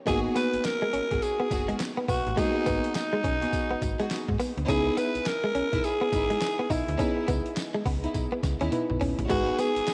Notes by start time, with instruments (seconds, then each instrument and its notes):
0.06 fm bass G#1, clean electric guitar G#3, fm electric piano A#3 B3 D#4 F#4, string section B3 F#4 G#4, tenor saxophone G#4, kick, closed hi-hat, tambourine
0.24 muted clean electric guitar stroke
0.35 clean electric guitar B3, tenor saxophone B4, closed hi-hat, tambourine
0.53 fm bass G#1, closed hi-hat
0.64 tenor saxophone A#4, muted clean electric guitar stroke, snare, clap, closed hi-hat, tambourine
0.82 clean electric guitar G#3
0.93 fm bass G#1, clean electric guitar C#4, closed hi-hat
1.11 fm bass G#1, string section B3 F#4 G#4, kick, closed hi-hat
1.22 tenor saxophone G#4, closed hi-hat, tambourine
1.40 clean electric guitar B3
1.50 fm bass F#1, string section B3 F#4 G#4, muted clean electric guitar stroke, kick, closed hi-hat, tambourine
1.68 clean electric guitar G#3, closed hi-hat
1.80 muted clean electric guitar stroke, snare, clap, closed hi-hat, tambourine
1.97 clean electric guitar B3
2.08 fm bass B1, clean electric guitar B3, tenor saxophone F#4, kick, open hi-hat, tambourine
2.27 fm bass A1, closed hi-hat
2.36 clean electric guitar G#3, fm electric piano A#3 B3 D#4 F#4, string section B3 F#4 G#4, tenor saxophone D#4, kick, closed hi-hat, tambourine
2.55 muted clean electric guitar stroke
2.66 fm bass G#1, clean electric guitar B3, kick, closed hi-hat, tambourine
2.84 closed hi-hat
2.95 tenor saxophone D#4, muted clean electric guitar stroke, snare, clap, closed hi-hat, tambourine
3.13 clean electric guitar G#3
3.24 fm bass B1, clean electric guitar C#4, kick, closed hi-hat
3.42 string section B3 F#4 G#4, closed hi-hat
3.53 kick, closed hi-hat, tambourine
3.71 fm bass G#1, clean electric guitar B3
3.82 fm bass G#1, muted clean electric guitar stroke, kick, closed hi-hat, tambourine
3.99 clean electric guitar G#3, string section B3 F#4 G#4, closed hi-hat
4.11 snare, clap, closed hi-hat, tambourine
4.28 fm bass G#2, kick
4.40 clean electric guitar B3, open hi-hat, tambourine
4.57 fm bass D2, closed hi-hat
4.67 fm bass C#2, fm electric piano B3 D#4 E4 G#4, string section B3 D#4 E4, clean electric guitar C#4, tenor saxophone G#4, kick, closed hi-hat, tambourine
4.86 muted clean electric guitar stroke
4.97 clean electric guitar B3, tenor saxophone B4, closed hi-hat, tambourine
5.15 fm bass B1, closed hi-hat
5.26 tenor saxophone A#4, muted clean electric guitar stroke, snare, clap, closed hi-hat, tambourine
5.44 clean electric guitar G#3
5.55 fm bass B1, clean electric guitar C#4, closed hi-hat
5.73 fm bass B1, string section B3 D#4 E4, kick, closed hi-hat
5.84 tenor saxophone G#4, closed hi-hat, tambourine
6.01 clean electric guitar B3
6.12 fm bass G#1, string section B3 D#4 E4, muted clean electric guitar stroke, kick, closed hi-hat, tambourine
6.30 clean electric guitar G#3, closed hi-hat
6.41 muted clean electric guitar stroke, snare, clap, closed hi-hat, tambourine
6.59 clean electric guitar B3
6.70 fm bass B1, clean electric guitar D#4, tenor saxophone E4, kick, open hi-hat, tambourine
6.88 fm bass D2, closed hi-hat
6.98 fm electric piano B3 E4 G#4 D#5, string section B3 D#4 E4, clean electric guitar C#4, kick, closed hi-hat, tambourine
7.17 muted clean electric guitar stroke
7.28 fm bass C#2, clean electric guitar B3, kick, closed hi-hat, tambourine
7.46 closed hi-hat
7.56 muted clean electric guitar stroke, snare, clap, closed hi-hat, tambourine
7.75 clean electric guitar G#3
7.85 fm bass C#2, clean electric guitar B3, kick, open hi-hat
8.03 string section B3 D#4 E4, closed hi-hat
8.14 fm bass B1, kick, closed hi-hat, tambourine
8.32 clean electric guitar B3
8.43 fm bass C#2, muted clean electric guitar stroke, kick, snare, closed hi-hat, tambourine
8.61 fm bass D#2, string section B3 D#4 E4, clean electric guitar C#4, closed hi-hat
8.71 fm electric piano B3 D#4 E4 B4, closed hi-hat, high tom
8.90 fm bass B1, mid tom
9.01 fm bass A#1, clean electric guitar C#4, mid tom, open hi-hat
9.19 fm bass A1, closed hi-hat, floor tom
9.29 fm bass G#1, clean electric guitar G#3, fm electric piano B3 D#4 F#4 B4, string section B3 F#4 G#4, tenor saxophone F#4, kick, crash, tambourine
9.48 muted clean electric guitar stroke
9.59 clean electric guitar B3, tenor saxophone G#4, closed hi-hat, tambourine
9.76 fm bass G#1, closed hi-hat
9.87 muted clean electric guitar stroke, snare, clap, closed hi-hat, tambourine